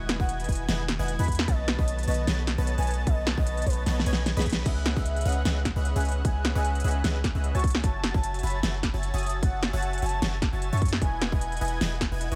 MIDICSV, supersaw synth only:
0, 0, Header, 1, 2, 480
1, 0, Start_track
1, 0, Key_signature, 4, "minor"
1, 0, Tempo, 397351
1, 1788, Time_signature, 4, 2, 24, 8
1, 14922, End_track
2, 0, Start_track
2, 0, Title_t, "Supersaw synth"
2, 0, Program_c, 0, 81
2, 0, Note_on_c, 0, 64, 90
2, 0, Note_on_c, 0, 71, 82
2, 0, Note_on_c, 0, 75, 81
2, 0, Note_on_c, 0, 78, 84
2, 0, Note_on_c, 0, 80, 100
2, 207, Note_off_c, 0, 64, 0
2, 207, Note_off_c, 0, 71, 0
2, 207, Note_off_c, 0, 75, 0
2, 207, Note_off_c, 0, 78, 0
2, 207, Note_off_c, 0, 80, 0
2, 238, Note_on_c, 0, 64, 105
2, 238, Note_on_c, 0, 78, 95
2, 238, Note_on_c, 0, 80, 108
2, 239, Note_on_c, 0, 71, 93
2, 239, Note_on_c, 0, 75, 96
2, 561, Note_off_c, 0, 64, 0
2, 561, Note_off_c, 0, 71, 0
2, 561, Note_off_c, 0, 75, 0
2, 561, Note_off_c, 0, 78, 0
2, 561, Note_off_c, 0, 80, 0
2, 588, Note_on_c, 0, 64, 80
2, 588, Note_on_c, 0, 71, 77
2, 588, Note_on_c, 0, 75, 73
2, 588, Note_on_c, 0, 78, 72
2, 588, Note_on_c, 0, 80, 92
2, 795, Note_off_c, 0, 64, 0
2, 795, Note_off_c, 0, 71, 0
2, 795, Note_off_c, 0, 75, 0
2, 795, Note_off_c, 0, 78, 0
2, 795, Note_off_c, 0, 80, 0
2, 827, Note_on_c, 0, 64, 79
2, 827, Note_on_c, 0, 71, 70
2, 827, Note_on_c, 0, 75, 73
2, 827, Note_on_c, 0, 78, 70
2, 827, Note_on_c, 0, 80, 87
2, 989, Note_off_c, 0, 64, 0
2, 989, Note_off_c, 0, 71, 0
2, 989, Note_off_c, 0, 75, 0
2, 989, Note_off_c, 0, 78, 0
2, 989, Note_off_c, 0, 80, 0
2, 1199, Note_on_c, 0, 64, 80
2, 1199, Note_on_c, 0, 71, 74
2, 1199, Note_on_c, 0, 75, 75
2, 1199, Note_on_c, 0, 78, 75
2, 1199, Note_on_c, 0, 80, 89
2, 1407, Note_off_c, 0, 64, 0
2, 1407, Note_off_c, 0, 71, 0
2, 1407, Note_off_c, 0, 75, 0
2, 1407, Note_off_c, 0, 78, 0
2, 1407, Note_off_c, 0, 80, 0
2, 1438, Note_on_c, 0, 64, 82
2, 1438, Note_on_c, 0, 71, 80
2, 1439, Note_on_c, 0, 75, 76
2, 1439, Note_on_c, 0, 78, 80
2, 1439, Note_on_c, 0, 80, 95
2, 1762, Note_off_c, 0, 64, 0
2, 1762, Note_off_c, 0, 71, 0
2, 1762, Note_off_c, 0, 75, 0
2, 1762, Note_off_c, 0, 78, 0
2, 1762, Note_off_c, 0, 80, 0
2, 1788, Note_on_c, 0, 59, 90
2, 1788, Note_on_c, 0, 71, 80
2, 1788, Note_on_c, 0, 73, 84
2, 1788, Note_on_c, 0, 75, 83
2, 1788, Note_on_c, 0, 81, 98
2, 2127, Note_off_c, 0, 59, 0
2, 2127, Note_off_c, 0, 71, 0
2, 2127, Note_off_c, 0, 73, 0
2, 2127, Note_off_c, 0, 75, 0
2, 2127, Note_off_c, 0, 81, 0
2, 2159, Note_on_c, 0, 59, 103
2, 2159, Note_on_c, 0, 71, 96
2, 2159, Note_on_c, 0, 73, 94
2, 2159, Note_on_c, 0, 75, 92
2, 2159, Note_on_c, 0, 81, 115
2, 2481, Note_off_c, 0, 59, 0
2, 2482, Note_off_c, 0, 71, 0
2, 2482, Note_off_c, 0, 73, 0
2, 2482, Note_off_c, 0, 75, 0
2, 2482, Note_off_c, 0, 81, 0
2, 2508, Note_on_c, 0, 59, 81
2, 2508, Note_on_c, 0, 71, 76
2, 2508, Note_on_c, 0, 73, 75
2, 2508, Note_on_c, 0, 75, 77
2, 2508, Note_on_c, 0, 81, 89
2, 2715, Note_off_c, 0, 59, 0
2, 2715, Note_off_c, 0, 71, 0
2, 2715, Note_off_c, 0, 73, 0
2, 2715, Note_off_c, 0, 75, 0
2, 2715, Note_off_c, 0, 81, 0
2, 2748, Note_on_c, 0, 59, 78
2, 2748, Note_on_c, 0, 71, 73
2, 2748, Note_on_c, 0, 73, 73
2, 2748, Note_on_c, 0, 75, 74
2, 2748, Note_on_c, 0, 81, 87
2, 2909, Note_off_c, 0, 59, 0
2, 2909, Note_off_c, 0, 71, 0
2, 2909, Note_off_c, 0, 73, 0
2, 2909, Note_off_c, 0, 75, 0
2, 2909, Note_off_c, 0, 81, 0
2, 3119, Note_on_c, 0, 59, 81
2, 3119, Note_on_c, 0, 71, 75
2, 3119, Note_on_c, 0, 73, 75
2, 3119, Note_on_c, 0, 75, 74
2, 3119, Note_on_c, 0, 81, 90
2, 3327, Note_off_c, 0, 59, 0
2, 3327, Note_off_c, 0, 71, 0
2, 3327, Note_off_c, 0, 73, 0
2, 3327, Note_off_c, 0, 75, 0
2, 3327, Note_off_c, 0, 81, 0
2, 3358, Note_on_c, 0, 59, 85
2, 3358, Note_on_c, 0, 71, 78
2, 3358, Note_on_c, 0, 73, 79
2, 3358, Note_on_c, 0, 75, 77
2, 3358, Note_on_c, 0, 81, 98
2, 3681, Note_off_c, 0, 59, 0
2, 3681, Note_off_c, 0, 73, 0
2, 3681, Note_off_c, 0, 75, 0
2, 3681, Note_off_c, 0, 81, 0
2, 3682, Note_off_c, 0, 71, 0
2, 3707, Note_on_c, 0, 59, 89
2, 3707, Note_on_c, 0, 71, 84
2, 3707, Note_on_c, 0, 73, 82
2, 3707, Note_on_c, 0, 75, 83
2, 3707, Note_on_c, 0, 81, 100
2, 4046, Note_off_c, 0, 75, 0
2, 4047, Note_off_c, 0, 59, 0
2, 4047, Note_off_c, 0, 71, 0
2, 4047, Note_off_c, 0, 73, 0
2, 4047, Note_off_c, 0, 81, 0
2, 4078, Note_on_c, 0, 59, 103
2, 4078, Note_on_c, 0, 71, 97
2, 4078, Note_on_c, 0, 73, 93
2, 4078, Note_on_c, 0, 75, 91
2, 4078, Note_on_c, 0, 81, 117
2, 4401, Note_off_c, 0, 59, 0
2, 4401, Note_off_c, 0, 71, 0
2, 4401, Note_off_c, 0, 73, 0
2, 4401, Note_off_c, 0, 75, 0
2, 4401, Note_off_c, 0, 81, 0
2, 4427, Note_on_c, 0, 59, 80
2, 4427, Note_on_c, 0, 71, 72
2, 4427, Note_on_c, 0, 73, 74
2, 4427, Note_on_c, 0, 75, 74
2, 4427, Note_on_c, 0, 81, 90
2, 4634, Note_off_c, 0, 81, 0
2, 4635, Note_off_c, 0, 59, 0
2, 4635, Note_off_c, 0, 71, 0
2, 4635, Note_off_c, 0, 73, 0
2, 4635, Note_off_c, 0, 75, 0
2, 4667, Note_on_c, 0, 59, 79
2, 4667, Note_on_c, 0, 71, 71
2, 4667, Note_on_c, 0, 73, 75
2, 4667, Note_on_c, 0, 75, 74
2, 4667, Note_on_c, 0, 81, 88
2, 4829, Note_off_c, 0, 59, 0
2, 4829, Note_off_c, 0, 71, 0
2, 4829, Note_off_c, 0, 73, 0
2, 4829, Note_off_c, 0, 75, 0
2, 4829, Note_off_c, 0, 81, 0
2, 4907, Note_on_c, 0, 59, 82
2, 4907, Note_on_c, 0, 71, 73
2, 4907, Note_on_c, 0, 73, 76
2, 4907, Note_on_c, 0, 75, 72
2, 4907, Note_on_c, 0, 80, 85
2, 5153, Note_off_c, 0, 59, 0
2, 5153, Note_off_c, 0, 71, 0
2, 5153, Note_off_c, 0, 73, 0
2, 5153, Note_off_c, 0, 75, 0
2, 5153, Note_off_c, 0, 80, 0
2, 5278, Note_on_c, 0, 59, 95
2, 5278, Note_on_c, 0, 71, 90
2, 5278, Note_on_c, 0, 73, 87
2, 5278, Note_on_c, 0, 75, 89
2, 5278, Note_on_c, 0, 83, 108
2, 5601, Note_off_c, 0, 59, 0
2, 5601, Note_off_c, 0, 71, 0
2, 5601, Note_off_c, 0, 73, 0
2, 5601, Note_off_c, 0, 75, 0
2, 5601, Note_off_c, 0, 83, 0
2, 5627, Note_on_c, 0, 61, 91
2, 5627, Note_on_c, 0, 68, 79
2, 5627, Note_on_c, 0, 71, 83
2, 5627, Note_on_c, 0, 76, 84
2, 5627, Note_on_c, 0, 78, 99
2, 5628, Note_on_c, 0, 75, 81
2, 5967, Note_off_c, 0, 61, 0
2, 5967, Note_off_c, 0, 68, 0
2, 5967, Note_off_c, 0, 71, 0
2, 5967, Note_off_c, 0, 75, 0
2, 5967, Note_off_c, 0, 76, 0
2, 5967, Note_off_c, 0, 78, 0
2, 5998, Note_on_c, 0, 61, 104
2, 5998, Note_on_c, 0, 68, 91
2, 5998, Note_on_c, 0, 71, 95
2, 5998, Note_on_c, 0, 75, 94
2, 5998, Note_on_c, 0, 76, 92
2, 5998, Note_on_c, 0, 78, 109
2, 6321, Note_off_c, 0, 61, 0
2, 6321, Note_off_c, 0, 68, 0
2, 6321, Note_off_c, 0, 71, 0
2, 6321, Note_off_c, 0, 75, 0
2, 6321, Note_off_c, 0, 76, 0
2, 6321, Note_off_c, 0, 78, 0
2, 6347, Note_on_c, 0, 61, 81
2, 6347, Note_on_c, 0, 68, 74
2, 6347, Note_on_c, 0, 71, 76
2, 6347, Note_on_c, 0, 75, 74
2, 6347, Note_on_c, 0, 76, 74
2, 6347, Note_on_c, 0, 78, 90
2, 6554, Note_off_c, 0, 61, 0
2, 6554, Note_off_c, 0, 71, 0
2, 6554, Note_off_c, 0, 75, 0
2, 6554, Note_off_c, 0, 76, 0
2, 6555, Note_off_c, 0, 68, 0
2, 6555, Note_off_c, 0, 78, 0
2, 6586, Note_on_c, 0, 71, 72
2, 6586, Note_on_c, 0, 75, 75
2, 6586, Note_on_c, 0, 76, 72
2, 6587, Note_on_c, 0, 61, 82
2, 6587, Note_on_c, 0, 68, 72
2, 6587, Note_on_c, 0, 78, 84
2, 6748, Note_off_c, 0, 61, 0
2, 6748, Note_off_c, 0, 68, 0
2, 6748, Note_off_c, 0, 71, 0
2, 6748, Note_off_c, 0, 75, 0
2, 6748, Note_off_c, 0, 76, 0
2, 6748, Note_off_c, 0, 78, 0
2, 6958, Note_on_c, 0, 61, 80
2, 6958, Note_on_c, 0, 68, 74
2, 6958, Note_on_c, 0, 71, 76
2, 6958, Note_on_c, 0, 75, 74
2, 6958, Note_on_c, 0, 76, 77
2, 6958, Note_on_c, 0, 78, 89
2, 7167, Note_off_c, 0, 61, 0
2, 7167, Note_off_c, 0, 68, 0
2, 7167, Note_off_c, 0, 71, 0
2, 7167, Note_off_c, 0, 75, 0
2, 7167, Note_off_c, 0, 76, 0
2, 7167, Note_off_c, 0, 78, 0
2, 7198, Note_on_c, 0, 61, 85
2, 7198, Note_on_c, 0, 68, 76
2, 7198, Note_on_c, 0, 71, 77
2, 7198, Note_on_c, 0, 75, 78
2, 7198, Note_on_c, 0, 76, 76
2, 7198, Note_on_c, 0, 78, 90
2, 7521, Note_off_c, 0, 61, 0
2, 7521, Note_off_c, 0, 68, 0
2, 7521, Note_off_c, 0, 71, 0
2, 7521, Note_off_c, 0, 75, 0
2, 7521, Note_off_c, 0, 76, 0
2, 7521, Note_off_c, 0, 78, 0
2, 7547, Note_on_c, 0, 75, 82
2, 7547, Note_on_c, 0, 78, 100
2, 7548, Note_on_c, 0, 61, 88
2, 7548, Note_on_c, 0, 68, 81
2, 7548, Note_on_c, 0, 71, 79
2, 7548, Note_on_c, 0, 76, 84
2, 7887, Note_off_c, 0, 61, 0
2, 7887, Note_off_c, 0, 68, 0
2, 7887, Note_off_c, 0, 71, 0
2, 7887, Note_off_c, 0, 75, 0
2, 7887, Note_off_c, 0, 76, 0
2, 7887, Note_off_c, 0, 78, 0
2, 7918, Note_on_c, 0, 61, 102
2, 7918, Note_on_c, 0, 68, 92
2, 7918, Note_on_c, 0, 71, 95
2, 7918, Note_on_c, 0, 75, 94
2, 7918, Note_on_c, 0, 76, 93
2, 7918, Note_on_c, 0, 78, 111
2, 8241, Note_off_c, 0, 61, 0
2, 8241, Note_off_c, 0, 68, 0
2, 8241, Note_off_c, 0, 71, 0
2, 8241, Note_off_c, 0, 75, 0
2, 8241, Note_off_c, 0, 76, 0
2, 8241, Note_off_c, 0, 78, 0
2, 8267, Note_on_c, 0, 75, 76
2, 8267, Note_on_c, 0, 76, 74
2, 8267, Note_on_c, 0, 78, 91
2, 8268, Note_on_c, 0, 61, 80
2, 8268, Note_on_c, 0, 68, 76
2, 8268, Note_on_c, 0, 71, 73
2, 8475, Note_off_c, 0, 61, 0
2, 8475, Note_off_c, 0, 68, 0
2, 8475, Note_off_c, 0, 71, 0
2, 8475, Note_off_c, 0, 75, 0
2, 8475, Note_off_c, 0, 76, 0
2, 8475, Note_off_c, 0, 78, 0
2, 8508, Note_on_c, 0, 61, 77
2, 8508, Note_on_c, 0, 68, 72
2, 8508, Note_on_c, 0, 71, 71
2, 8508, Note_on_c, 0, 75, 71
2, 8508, Note_on_c, 0, 76, 72
2, 8508, Note_on_c, 0, 78, 87
2, 8669, Note_off_c, 0, 61, 0
2, 8669, Note_off_c, 0, 68, 0
2, 8669, Note_off_c, 0, 71, 0
2, 8669, Note_off_c, 0, 75, 0
2, 8669, Note_off_c, 0, 76, 0
2, 8669, Note_off_c, 0, 78, 0
2, 8879, Note_on_c, 0, 61, 80
2, 8879, Note_on_c, 0, 68, 75
2, 8879, Note_on_c, 0, 71, 76
2, 8879, Note_on_c, 0, 75, 73
2, 8879, Note_on_c, 0, 76, 75
2, 8879, Note_on_c, 0, 78, 89
2, 9087, Note_off_c, 0, 61, 0
2, 9087, Note_off_c, 0, 68, 0
2, 9087, Note_off_c, 0, 71, 0
2, 9087, Note_off_c, 0, 75, 0
2, 9087, Note_off_c, 0, 76, 0
2, 9087, Note_off_c, 0, 78, 0
2, 9118, Note_on_c, 0, 76, 80
2, 9119, Note_on_c, 0, 66, 83
2, 9119, Note_on_c, 0, 73, 78
2, 9119, Note_on_c, 0, 80, 78
2, 9119, Note_on_c, 0, 81, 93
2, 9441, Note_off_c, 0, 73, 0
2, 9441, Note_off_c, 0, 76, 0
2, 9441, Note_off_c, 0, 81, 0
2, 9442, Note_off_c, 0, 66, 0
2, 9442, Note_off_c, 0, 80, 0
2, 9467, Note_on_c, 0, 76, 81
2, 9467, Note_on_c, 0, 80, 81
2, 9467, Note_on_c, 0, 81, 101
2, 9468, Note_on_c, 0, 66, 92
2, 9468, Note_on_c, 0, 73, 85
2, 9807, Note_off_c, 0, 66, 0
2, 9807, Note_off_c, 0, 73, 0
2, 9807, Note_off_c, 0, 76, 0
2, 9807, Note_off_c, 0, 80, 0
2, 9807, Note_off_c, 0, 81, 0
2, 9838, Note_on_c, 0, 66, 105
2, 9838, Note_on_c, 0, 73, 95
2, 9838, Note_on_c, 0, 76, 93
2, 9838, Note_on_c, 0, 80, 98
2, 9838, Note_on_c, 0, 81, 114
2, 10161, Note_off_c, 0, 66, 0
2, 10161, Note_off_c, 0, 73, 0
2, 10161, Note_off_c, 0, 76, 0
2, 10161, Note_off_c, 0, 80, 0
2, 10161, Note_off_c, 0, 81, 0
2, 10187, Note_on_c, 0, 66, 84
2, 10187, Note_on_c, 0, 73, 75
2, 10187, Note_on_c, 0, 76, 76
2, 10187, Note_on_c, 0, 80, 74
2, 10187, Note_on_c, 0, 81, 90
2, 10394, Note_off_c, 0, 66, 0
2, 10394, Note_off_c, 0, 73, 0
2, 10394, Note_off_c, 0, 76, 0
2, 10394, Note_off_c, 0, 80, 0
2, 10394, Note_off_c, 0, 81, 0
2, 10427, Note_on_c, 0, 66, 81
2, 10427, Note_on_c, 0, 73, 73
2, 10428, Note_on_c, 0, 76, 70
2, 10428, Note_on_c, 0, 80, 74
2, 10428, Note_on_c, 0, 81, 84
2, 10589, Note_off_c, 0, 66, 0
2, 10589, Note_off_c, 0, 73, 0
2, 10589, Note_off_c, 0, 76, 0
2, 10589, Note_off_c, 0, 80, 0
2, 10589, Note_off_c, 0, 81, 0
2, 10797, Note_on_c, 0, 66, 81
2, 10797, Note_on_c, 0, 80, 74
2, 10798, Note_on_c, 0, 73, 74
2, 10798, Note_on_c, 0, 76, 76
2, 10798, Note_on_c, 0, 81, 91
2, 11007, Note_off_c, 0, 66, 0
2, 11007, Note_off_c, 0, 73, 0
2, 11007, Note_off_c, 0, 76, 0
2, 11007, Note_off_c, 0, 80, 0
2, 11007, Note_off_c, 0, 81, 0
2, 11038, Note_on_c, 0, 66, 86
2, 11038, Note_on_c, 0, 73, 77
2, 11038, Note_on_c, 0, 76, 79
2, 11038, Note_on_c, 0, 80, 77
2, 11038, Note_on_c, 0, 81, 93
2, 11361, Note_off_c, 0, 66, 0
2, 11361, Note_off_c, 0, 73, 0
2, 11361, Note_off_c, 0, 76, 0
2, 11361, Note_off_c, 0, 80, 0
2, 11361, Note_off_c, 0, 81, 0
2, 11387, Note_on_c, 0, 66, 87
2, 11387, Note_on_c, 0, 73, 81
2, 11387, Note_on_c, 0, 76, 83
2, 11387, Note_on_c, 0, 80, 83
2, 11387, Note_on_c, 0, 81, 98
2, 11727, Note_off_c, 0, 66, 0
2, 11727, Note_off_c, 0, 73, 0
2, 11727, Note_off_c, 0, 76, 0
2, 11727, Note_off_c, 0, 80, 0
2, 11727, Note_off_c, 0, 81, 0
2, 11758, Note_on_c, 0, 66, 106
2, 11758, Note_on_c, 0, 73, 98
2, 11758, Note_on_c, 0, 76, 95
2, 11758, Note_on_c, 0, 80, 96
2, 11758, Note_on_c, 0, 81, 111
2, 12081, Note_off_c, 0, 66, 0
2, 12081, Note_off_c, 0, 73, 0
2, 12081, Note_off_c, 0, 76, 0
2, 12081, Note_off_c, 0, 80, 0
2, 12081, Note_off_c, 0, 81, 0
2, 12107, Note_on_c, 0, 66, 80
2, 12107, Note_on_c, 0, 73, 72
2, 12107, Note_on_c, 0, 76, 73
2, 12107, Note_on_c, 0, 80, 77
2, 12107, Note_on_c, 0, 81, 88
2, 12314, Note_off_c, 0, 66, 0
2, 12314, Note_off_c, 0, 73, 0
2, 12314, Note_off_c, 0, 80, 0
2, 12314, Note_off_c, 0, 81, 0
2, 12315, Note_off_c, 0, 76, 0
2, 12346, Note_on_c, 0, 73, 71
2, 12346, Note_on_c, 0, 80, 69
2, 12346, Note_on_c, 0, 81, 90
2, 12347, Note_on_c, 0, 66, 76
2, 12347, Note_on_c, 0, 76, 70
2, 12508, Note_off_c, 0, 66, 0
2, 12508, Note_off_c, 0, 73, 0
2, 12508, Note_off_c, 0, 80, 0
2, 12508, Note_off_c, 0, 81, 0
2, 12509, Note_off_c, 0, 76, 0
2, 12717, Note_on_c, 0, 80, 74
2, 12717, Note_on_c, 0, 81, 88
2, 12718, Note_on_c, 0, 66, 83
2, 12718, Note_on_c, 0, 73, 73
2, 12718, Note_on_c, 0, 76, 74
2, 12927, Note_off_c, 0, 66, 0
2, 12927, Note_off_c, 0, 73, 0
2, 12927, Note_off_c, 0, 76, 0
2, 12927, Note_off_c, 0, 80, 0
2, 12927, Note_off_c, 0, 81, 0
2, 12957, Note_on_c, 0, 66, 89
2, 12957, Note_on_c, 0, 73, 79
2, 12957, Note_on_c, 0, 76, 79
2, 12957, Note_on_c, 0, 80, 78
2, 12957, Note_on_c, 0, 81, 96
2, 13281, Note_off_c, 0, 66, 0
2, 13281, Note_off_c, 0, 73, 0
2, 13281, Note_off_c, 0, 76, 0
2, 13281, Note_off_c, 0, 80, 0
2, 13281, Note_off_c, 0, 81, 0
2, 13306, Note_on_c, 0, 64, 91
2, 13306, Note_on_c, 0, 75, 83
2, 13306, Note_on_c, 0, 78, 79
2, 13306, Note_on_c, 0, 80, 96
2, 13307, Note_on_c, 0, 71, 82
2, 13646, Note_off_c, 0, 64, 0
2, 13646, Note_off_c, 0, 80, 0
2, 13647, Note_off_c, 0, 71, 0
2, 13647, Note_off_c, 0, 75, 0
2, 13647, Note_off_c, 0, 78, 0
2, 13678, Note_on_c, 0, 64, 102
2, 13678, Note_on_c, 0, 71, 94
2, 13678, Note_on_c, 0, 75, 92
2, 13678, Note_on_c, 0, 78, 93
2, 13678, Note_on_c, 0, 80, 110
2, 14001, Note_off_c, 0, 64, 0
2, 14001, Note_off_c, 0, 71, 0
2, 14001, Note_off_c, 0, 75, 0
2, 14001, Note_off_c, 0, 78, 0
2, 14001, Note_off_c, 0, 80, 0
2, 14027, Note_on_c, 0, 64, 78
2, 14027, Note_on_c, 0, 71, 78
2, 14027, Note_on_c, 0, 75, 76
2, 14027, Note_on_c, 0, 78, 76
2, 14027, Note_on_c, 0, 80, 92
2, 14234, Note_off_c, 0, 80, 0
2, 14235, Note_off_c, 0, 64, 0
2, 14235, Note_off_c, 0, 71, 0
2, 14235, Note_off_c, 0, 75, 0
2, 14235, Note_off_c, 0, 78, 0
2, 14267, Note_on_c, 0, 64, 81
2, 14267, Note_on_c, 0, 71, 73
2, 14267, Note_on_c, 0, 75, 75
2, 14268, Note_on_c, 0, 78, 72
2, 14268, Note_on_c, 0, 80, 88
2, 14429, Note_off_c, 0, 64, 0
2, 14429, Note_off_c, 0, 71, 0
2, 14429, Note_off_c, 0, 75, 0
2, 14429, Note_off_c, 0, 78, 0
2, 14429, Note_off_c, 0, 80, 0
2, 14639, Note_on_c, 0, 64, 81
2, 14639, Note_on_c, 0, 71, 73
2, 14639, Note_on_c, 0, 75, 74
2, 14639, Note_on_c, 0, 78, 75
2, 14639, Note_on_c, 0, 80, 90
2, 14847, Note_off_c, 0, 64, 0
2, 14847, Note_off_c, 0, 71, 0
2, 14847, Note_off_c, 0, 75, 0
2, 14847, Note_off_c, 0, 78, 0
2, 14847, Note_off_c, 0, 80, 0
2, 14878, Note_on_c, 0, 64, 86
2, 14878, Note_on_c, 0, 71, 81
2, 14879, Note_on_c, 0, 75, 79
2, 14879, Note_on_c, 0, 78, 80
2, 14879, Note_on_c, 0, 80, 94
2, 14922, Note_off_c, 0, 64, 0
2, 14922, Note_off_c, 0, 71, 0
2, 14922, Note_off_c, 0, 75, 0
2, 14922, Note_off_c, 0, 78, 0
2, 14922, Note_off_c, 0, 80, 0
2, 14922, End_track
0, 0, End_of_file